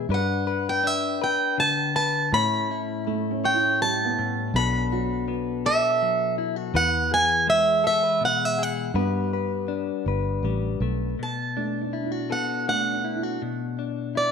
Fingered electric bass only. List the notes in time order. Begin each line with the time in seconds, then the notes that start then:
0.09 G2
2.32 A2
4.54 B1
6.74 E2
8.94 G2
10.06 G1
10.43 A1
10.80 B1